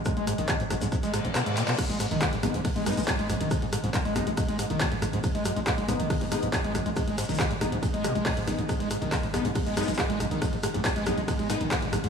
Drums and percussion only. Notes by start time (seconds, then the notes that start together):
0.05 kick, cross-stick, closed hi-hat, shaker
0.17 closed hi-hat
0.27 cross-stick, open hi-hat, shaker
0.38 snare, closed hi-hat
0.48 kick, cross-stick, snare, clap, closed hi-hat, shaker
0.60 snare, closed hi-hat
0.70 cross-stick, snare, open hi-hat, shaker
0.81 snare, closed hi-hat, shaker
0.92 kick, cross-stick, snare, closed hi-hat, shaker
1.03 snare, closed hi-hat, shaker
1.14 cross-stick, open hi-hat, shaker
1.25 closed hi-hat
1.35 cross-stick, snare, clap, closed hi-hat, shaker
1.46 closed hi-hat
1.57 clap, open hi-hat, shaker
1.68 snare, clap, closed hi-hat
1.78 kick, cross-stick, closed hi-hat, crash, ride, shaker
1.90 snare, closed hi-hat
1.99 cross-stick, open hi-hat, shaker
2.11 closed hi-hat
2.21 kick, cross-stick, snare, clap, closed hi-hat, ride, shaker
2.33 snare, closed hi-hat
2.43 cross-stick, open hi-hat, shaker
2.54 closed hi-hat
2.65 kick, cross-stick, closed hi-hat, open hi-hat, ride
2.76 snare, closed hi-hat
2.86 cross-stick, snare, open hi-hat, shaker
2.92 snare, shaker
2.97 snare, closed hi-hat, shaker
3.03 snare, shaker
3.08 kick, cross-stick, snare, clap, closed hi-hat, ride, shaker
3.19 closed hi-hat
3.30 cross-stick, open hi-hat, shaker
3.41 closed hi-hat
3.51 kick, cross-stick, closed hi-hat, ride, shaker
3.62 closed hi-hat
3.73 cross-stick, open hi-hat, shaker
3.84 snare, closed hi-hat
3.94 kick, cross-stick, snare, clap, closed hi-hat, ride, shaker
4.05 snare, closed hi-hat
4.16 cross-stick, open hi-hat, shaker
4.27 closed hi-hat
4.37 kick, cross-stick, closed hi-hat, ride, shaker
4.48 closed hi-hat
4.59 cross-stick, open hi-hat, shaker
4.70 closed hi-hat
4.80 kick, cross-stick, snare, clap, closed hi-hat, ride, shaker
4.92 closed hi-hat
5.02 cross-stick, open hi-hat, shaker
5.13 snare, closed hi-hat
5.24 kick, cross-stick, closed hi-hat, ride, shaker
5.34 snare, closed hi-hat
5.44 cross-stick, open hi-hat, shaker
5.56 closed hi-hat
5.67 kick, cross-stick, snare, clap, closed hi-hat, ride, shaker
5.77 snare, closed hi-hat
5.88 cross-stick, open hi-hat, shaker
6.00 closed hi-hat
6.10 kick, cross-stick, closed hi-hat, open hi-hat, ride
6.21 snare, closed hi-hat
6.32 cross-stick, open hi-hat, shaker
6.42 closed hi-hat
6.53 kick, cross-stick, snare, clap, closed hi-hat, ride, shaker
6.64 closed hi-hat
6.75 cross-stick, open hi-hat, shaker
6.86 closed hi-hat
6.96 kick, cross-stick, closed hi-hat, ride, shaker
7.08 closed hi-hat
7.18 cross-stick, snare, open hi-hat, shaker
7.23 snare, shaker
7.29 snare, closed hi-hat, shaker
7.34 snare, shaker
7.39 kick, cross-stick, snare, clap, closed hi-hat, ride, shaker
7.51 snare, closed hi-hat
7.61 cross-stick, open hi-hat, shaker
7.72 closed hi-hat
7.83 kick, cross-stick, closed hi-hat, ride, shaker
7.94 closed hi-hat
8.04 cross-stick, open hi-hat, shaker
8.15 closed hi-hat
8.26 kick, cross-stick, clap, closed hi-hat, open hi-hat, ride
8.37 snare, closed hi-hat
8.47 cross-stick, snare, open hi-hat, shaker
8.58 closed hi-hat
8.69 kick, cross-stick, closed hi-hat, ride, shaker
8.80 snare, closed hi-hat
8.90 cross-stick, open hi-hat, shaker
9.02 closed hi-hat
9.12 kick, cross-stick, snare, clap, closed hi-hat, ride, shaker
9.23 snare, closed hi-hat
9.34 cross-stick, open hi-hat, shaker
9.45 closed hi-hat
9.55 kick, cross-stick, closed hi-hat, open hi-hat, ride
9.66 snare, closed hi-hat
9.76 cross-stick, snare, open hi-hat, shaker
9.82 snare, shaker
9.87 snare, closed hi-hat, shaker
9.93 snare, shaker
9.98 kick, cross-stick, snare, clap, closed hi-hat, ride, shaker
10.10 closed hi-hat
10.20 cross-stick, open hi-hat, shaker
10.31 closed hi-hat
10.42 kick, cross-stick, closed hi-hat, ride, shaker
10.53 closed hi-hat
10.63 cross-stick, open hi-hat, shaker
10.74 snare, closed hi-hat
10.85 kick, cross-stick, snare, clap, closed hi-hat, ride, shaker
10.96 snare, closed hi-hat
11.06 cross-stick, open hi-hat, shaker
11.18 closed hi-hat
11.28 kick, cross-stick, closed hi-hat, ride, shaker
11.39 closed hi-hat
11.50 cross-stick, open hi-hat, shaker
11.61 closed hi-hat
11.71 kick, cross-stick, snare, clap, closed hi-hat, ride, shaker
11.82 closed hi-hat
11.93 cross-stick, open hi-hat, shaker
12.04 snare, closed hi-hat